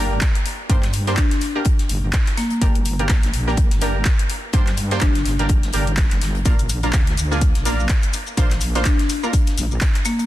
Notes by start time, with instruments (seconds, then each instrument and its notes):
Already playing: wobble bass G1, synth stab A#3 D4 G4 A#4
0.21 kick, snare, clap, closed hi-hat
0.35 closed hi-hat
0.46 closed hi-hat, open hi-hat
0.69 wobble bass G2, synth stab A#3 D4 G4 C5, kick, closed hi-hat
0.83 snare, clap, closed hi-hat
0.93 closed hi-hat, open hi-hat
1.07 synth stab A#3 D4 G4 C5, snare, closed hi-hat
1.17 marimba D4, kick, snare, clap, closed hi-hat
1.31 snare, closed hi-hat
1.40 snare, closed hi-hat, open hi-hat
1.55 synth stab A#3 D4 G4 A#4
1.65 kick, closed hi-hat
1.79 snare, closed hi-hat
1.89 wobble bass G1, closed hi-hat, open hi-hat
2.13 kick, snare, clap, closed hi-hat
2.27 snare, clap, closed hi-hat
2.37 marimba A#3, snare, closed hi-hat, open hi-hat
2.50 marimba A#3, closed hi-hat
2.62 wobble bass G1, synth stab A#3 D4 G4 A#4, kick, closed hi-hat
2.75 wobble bass G1, closed hi-hat
2.85 closed hi-hat, open hi-hat
2.99 synth stab A#3 D4 G4 A#4, closed hi-hat
3.09 wobble bass A#1, kick, snare, clap, closed hi-hat
3.23 snare, closed hi-hat
3.33 wobble bass A#1, closed hi-hat, open hi-hat
3.47 synth stab A#3 D4 G4 A#4, snare
3.57 kick, closed hi-hat
3.71 wobble bass G1, snare, closed hi-hat
3.81 synth stab A#3 D4 G4 A#4, snare, closed hi-hat, open hi-hat
4.05 kick, snare, clap, closed hi-hat
4.19 closed hi-hat
4.30 closed hi-hat, open hi-hat
4.53 wobble bass G2, synth stab A#3 D4 G4 C5, kick, closed hi-hat
4.67 snare, clap, closed hi-hat
4.77 closed hi-hat, open hi-hat
4.91 synth stab A#3 D4 G4 C5, snare, closed hi-hat
5.01 wobble bass G1, marimba D4, kick, snare, clap, closed hi-hat
5.15 snare, closed hi-hat
5.25 wobble bass G1, snare, closed hi-hat, open hi-hat
5.39 synth stab A#3 D4 G4 A#4, closed hi-hat
5.49 kick, closed hi-hat
5.63 snare, closed hi-hat
5.73 wobble bass G1, synth stab A#3 D4 G4 A#4, closed hi-hat, open hi-hat
5.87 closed hi-hat
5.97 kick, snare, clap, closed hi-hat
6.11 snare, clap, closed hi-hat
6.21 wobble bass G1, snare, closed hi-hat, open hi-hat
6.35 closed hi-hat
6.45 wobble bass A#1, synth stab A#3 D4 F4 A#4, kick, closed hi-hat, maracas
6.59 wobble bass A#1, closed hi-hat, maracas
6.69 closed hi-hat, open hi-hat, maracas
6.83 synth stab A#3 D4 F4 A#4, closed hi-hat, maracas
6.93 wobble bass D2, kick, snare, clap, closed hi-hat, maracas
7.07 snare, closed hi-hat
7.17 wobble bass D2, closed hi-hat, open hi-hat, maracas
7.31 synth stab A#3 D4 F4 G#4, snare, maracas
7.41 kick, closed hi-hat, maracas
7.55 wobble bass A#1, snare, closed hi-hat
7.65 synth stab A#3 D4 F4 A#4, snare, closed hi-hat, open hi-hat, maracas
7.80 maracas
7.89 kick, snare, clap, closed hi-hat, maracas
8.03 closed hi-hat, maracas
8.13 closed hi-hat, open hi-hat, maracas
8.27 maracas
8.37 wobble bass A#1, synth stab A#3 D4 F4 C5, kick, closed hi-hat, maracas
8.51 snare, clap, closed hi-hat, maracas
8.61 closed hi-hat, open hi-hat, maracas
8.75 synth stab A#3 D4 F4 C5, snare, closed hi-hat, maracas
8.85 marimba D4, kick, snare, clap, closed hi-hat, maracas
8.99 snare, closed hi-hat
9.09 snare, closed hi-hat, open hi-hat, maracas
9.23 synth stab A#3 D4 F4 A#4, maracas
9.33 kick, closed hi-hat, maracas
9.47 snare, closed hi-hat, maracas
9.57 wobble bass A#1, closed hi-hat, open hi-hat, maracas
9.71 maracas
9.81 kick, snare, clap, closed hi-hat, maracas
9.95 snare, clap, closed hi-hat, maracas
10.05 marimba A#3, snare, closed hi-hat, open hi-hat, maracas
10.19 marimba A#3, closed hi-hat, maracas